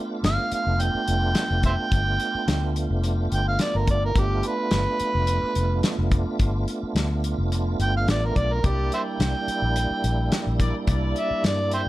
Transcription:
Already playing: A3 B3 D4 F4
0.23 G1 F5, snare, closed hi-hat
0.52 F5, muted fingered electric bass stroke, closed hi-hat
0.67 F1
0.80 G5, closed hi-hat
0.95 muted fingered electric bass stroke
1.08 F1, closed hi-hat
1.35 snare, closed hi-hat
1.51 F1
1.63 C5 E5 G5, kick, closed hi-hat
1.92 G1, kick, closed hi-hat
2.20 closed hi-hat
2.35 muted fingered electric bass stroke
2.48 D2, snare, closed hi-hat
2.76 closed hi-hat
2.90 F1
3.04 closed hi-hat
3.32 G1 G5, closed hi-hat
3.48 F5
3.59 D5, snare, closed hi-hat
3.75 G1 A#4
3.87 D5, kick, closed hi-hat
4.05 A#4
4.14 G1 A3 B3 D4 F4, kick, closed hi-hat
4.19 G4
4.43 B4, closed hi-hat
4.71 G1, snare, closed hi-hat
5.00 muted fingered electric bass stroke, closed hi-hat
5.15 F1
5.27 closed hi-hat
5.43 muted fingered electric bass stroke
5.55 F1, closed hi-hat
5.83 snare, closed hi-hat
5.99 F1
6.11 kick, closed hi-hat
6.39 G1, kick, closed hi-hat
6.68 closed hi-hat
6.83 muted fingered electric bass stroke
6.95 D2, snare, closed hi-hat
7.24 closed hi-hat
7.38 F1
7.52 closed hi-hat
7.79 G1 G5, closed hi-hat
7.97 F5
8.07 A1 D5, snare, closed hi-hat
8.25 A#4
8.36 B1 D5, kick, closed hi-hat
8.53 A#4
8.62 C2 G3 A#3 D4 E4 G4 A#4 D5, kick, closed hi-hat
8.92 C5 E5 G5, closed hi-hat
9.20 C2, snare, closed hi-hat
9.48 muted fingered electric bass stroke, closed hi-hat
9.62 A#1
9.76 closed hi-hat
9.90 muted fingered electric bass stroke
10.04 A#1, closed hi-hat
10.32 snare, closed hi-hat
10.47 A#1
10.59 E4 A#4 D5, kick, closed hi-hat
10.87 C2 E4 A#4 D5, kick, closed hi-hat
11.16 E5, closed hi-hat
11.31 muted fingered electric bass stroke
11.44 G2 D5, snare, closed hi-hat
11.71 C5 E5 G5, closed hi-hat

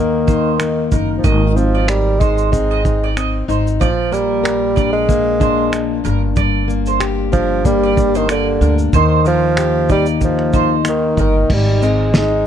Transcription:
Already playing: D#2 D#3 A#3 D#4 A#4
0.27 D#4 C5, kick, shaker
0.60 A#3, finger snap, shaker
0.92 F#1 D#4 A#4, kick, shaker
1.18 F3
1.24 G#1 D#3 D#5, kick, shaker
1.56 F3 C4, shaker
1.75 D5
1.88 G3 A#4, finger snap, shaker
2.20 G#3 D#4 C5, kick, shaker
2.38 shaker
2.52 G#3 C4, kick, shaker
2.71 D#5
2.85 D#4, kick, shaker
3.04 D5
3.17 C4 D#5, finger snap, shaker
3.48 G#1 D#4 C5, shaker
3.67 shaker
3.80 A#1 A#2 F3 D5, kick, shaker
4.12 G3 A#3 A#4, shaker
4.44 A#4, finger snap, shaker
4.76 D4 D5, kick, shaker
4.93 G#3
5.09 A#3, kick, shaker
5.40 D4 C5, kick, shaker
5.72 A#3, finger snap, shaker
6.04 G1 G2 A#4, shaker
6.36 G2 D5, kick, shaker
6.68 A#3, shaker
6.86 C5, shaker
7.00 G4, finger snap, shaker
7.32 F3 D4 A#4, kick, shaker
7.65 G3 A#3, kick, shaker
7.83 D5
7.96 D4, kick, shaker
8.15 D#3 C5, shaker
8.29 D3 A#3 D5, finger snap, shaker
8.61 D2 D4 A#4, shaker
8.79 shaker
8.93 D#2 D#3 C5, kick, shaker
9.25 F3 A#3 A#4, shaker
9.57 G4, finger snap, shaker
9.89 G3 D#4 D5, kick, shaker
10.06 shaker
10.21 F3 A#3, kick, shaker
10.39 finger snap
10.53 D#4 C5, kick, shaker
10.85 D#3 A#3, finger snap, shaker
11.17 G1 D#3 D#4 A#4, kick, shaker
11.50 G#1 G3, kick, crash
11.82 G#3 C4 A#4, shaker
12.14 G#3 D#4, snare, shaker

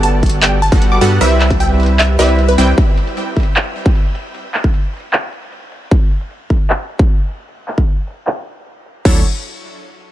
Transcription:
Already playing: G1 G3 B3 F#4 A4 D5
0.03 A5, closed hi-hat
0.23 kick, closed hi-hat
0.26 closed hi-hat
0.29 closed hi-hat
0.42 G5, clap, closed hi-hat
0.62 A5, closed hi-hat
0.72 G1 G3 B3 F#4 A4 F#5, kick, closed hi-hat
0.82 closed hi-hat
0.92 D6
1.01 G2 G3 B3 F#4 A4 F#5, closed hi-hat
1.21 C2 G3 C4 E4 B4 E5, closed hi-hat
1.41 clap, closed hi-hat
1.50 kick, closed hi-hat
1.60 G5, closed hi-hat
1.80 closed hi-hat
1.83 closed hi-hat
1.86 closed hi-hat
1.99 E5, clap, closed hi-hat
2.19 C2 G3 C4 E4 B4 D5 E5, closed hi-hat
2.29 closed hi-hat
2.39 closed hi-hat
2.48 B4
2.58 C2 G3 C4 E4 B4 G5, closed hi-hat
2.78 kick, closed hi-hat
2.97 closed hi-hat
3.07 closed hi-hat
3.17 closed hi-hat
3.37 kick, closed hi-hat
3.40 closed hi-hat
3.43 closed hi-hat
3.56 clap, closed hi-hat
3.76 closed hi-hat
3.86 kick, closed hi-hat
3.95 closed hi-hat
4.15 closed hi-hat
4.35 closed hi-hat
4.54 clap, closed hi-hat
4.64 kick, closed hi-hat
4.74 closed hi-hat
4.93 closed hi-hat
4.97 closed hi-hat
5.00 closed hi-hat
5.13 clap, closed hi-hat
5.33 closed hi-hat
5.43 closed hi-hat
5.52 closed hi-hat
5.72 closed hi-hat
5.91 kick
6.11 closed hi-hat
6.21 closed hi-hat
6.31 closed hi-hat
6.50 kick, closed hi-hat
6.54 closed hi-hat
6.57 closed hi-hat
6.70 clap, closed hi-hat
6.89 closed hi-hat
6.99 kick
7.09 closed hi-hat
7.29 closed hi-hat
7.48 closed hi-hat
7.68 clap, closed hi-hat
7.78 kick
7.88 closed hi-hat
8.07 closed hi-hat
8.10 closed hi-hat
8.14 closed hi-hat
8.27 clap, closed hi-hat
8.46 closed hi-hat
8.56 closed hi-hat
8.66 closed hi-hat
8.86 closed hi-hat
9.05 D2 F#3 D4 E4 A4 C#5, kick, crash

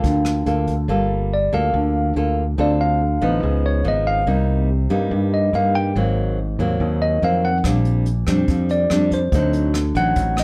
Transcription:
Already playing: A#3 F4 A4 G5
0.03 D2 D3, kick, closed hi-hat
0.25 cross-stick, closed hi-hat
0.46 D2 A#3 F4 A4, closed hi-hat
0.67 kick, closed hi-hat
0.88 G1 G3 A#3 F4 A4
1.34 D5
1.53 D2 A#3 F4 A4 F5
1.74 D2 D3
2.16 D2 A#3 F4 A4
2.58 D2 D3 C4 F4 A4 D5
2.81 F5
3.21 A1 F3 B3 D#4
3.43 C#2 C#3
3.66 C#5
3.84 G#1 F3 B3 D#4 D#5
4.07 F5
4.26 C2 C3 G3 A#3 D#4
4.90 G2 G3 A#3 D#4
5.11 G2
5.34 D#5
5.53 G2 G3 A#3 D#4 F5
5.75 G5
5.95 G#1 G#2 F#3 A#3 C4
6.59 D#2 F#3 A#3 C4
6.80 D#2 D#3
7.02 D#5
7.22 F2 F#3 A#3 C4 F5
7.45 F#5
7.64 A#1 A#2 G3 C4 D4, kick, cross-stick, closed hi-hat
7.85 closed hi-hat
8.06 closed hi-hat
8.27 F2 G3 C4 D4, kick, cross-stick, closed hi-hat
8.48 F2 F3, kick, closed hi-hat
8.69 D5, closed hi-hat
8.90 F2 G3 C4 D4, cross-stick, closed hi-hat
9.11 C5, kick, closed hi-hat
9.32 D2 D3 F#3 C4 D#4, kick, closed hi-hat
9.53 closed hi-hat
9.74 cross-stick, closed hi-hat
9.95 A1 F#3 C4 D#4 F#5, kick, closed hi-hat
10.16 A1, kick, closed hi-hat
10.37 D#5, cross-stick, closed hi-hat

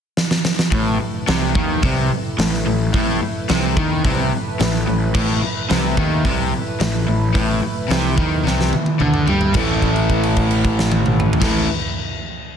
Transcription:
0.17 snare
0.31 snare
0.45 snare
0.59 snare
0.71 A1 A2 A3 E4 B4, kick, open hi-hat
1.00 muted overdriven electric guitar stroke, muted picked electric bass stroke
1.27 C2 C3, snare, open hi-hat
1.55 D#2 D#3, kick
1.83 C2 C3, kick, open hi-hat
2.38 A1 A2, snare, open hi-hat
2.54 snare
2.66 A1 A2
2.94 A1 A2, kick, open hi-hat
3.22 muted picked electric bass stroke, muted overdriven electric guitar stroke
3.49 C2 C3, snare, open hi-hat
3.77 D#2 D#3, kick
4.04 C2 C3, kick, open hi-hat
4.59 A1 A2, snare, open hi-hat
4.74 snare
4.87 A1 A2
5.15 A1 A2, kick, crash
5.44 muted picked electric bass stroke, muted overdriven electric guitar stroke
5.70 C2 C3, snare, open hi-hat
5.97 D#2 D#3, kick
6.25 C2 C3, kick, open hi-hat
6.80 A1 A2, snare, open hi-hat
7.07 A1 A2
7.33 A1 A2, kick, open hi-hat
7.62 muted overdriven electric guitar stroke, muted picked electric bass stroke
7.88 C2 C3, snare, open hi-hat
8.17 D#2 D#3, kick
8.43 C2 C3, snare
8.61 snare
8.73 high tom
8.86 high tom
8.99 D2 D3, mid tom
9.14 mid tom
9.27 G2 G3, floor tom
9.41 floor tom
9.53 A1 A2 E3 A3 B4, kick, crash
9.57 A3 E4
9.82 kick, crash
9.96 crash
10.09 kick, crash
10.23 crash
10.36 kick, crash
10.51 crash
10.64 kick, crash
10.79 snare
10.92 high tom
11.06 mid tom
11.20 mid tom
11.33 floor tom
11.40 A1 A2 E3 A3 E4 B4, kick, snare, crash

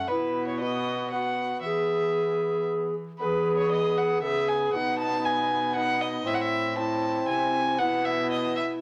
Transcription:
0.08 B2 B3 E4 B4
0.47 C#5
0.60 B3 F#4 D#5
1.11 B3 F#4 F#5
1.63 E3 B3 G#4 E5
3.18 E3 B3 A4 B4
3.24 G#4
3.57 C#5
3.71 D#5
3.98 F#5
4.22 C#3 B3 A4 E5
4.26 G#4
4.48 G#5
4.73 B2 B3 D#4 F#5
4.98 A5
5.25 G#5
5.75 B3 D#4 F#5
6.01 D#5
6.25 A2 C4 E4 E5
6.34 F#5
6.41 E5
6.76 C4 E4 A5
7.28 C3 G#5
7.78 B2 B3 E4 F#5
8.05 E5
8.31 D#5
8.57 E5

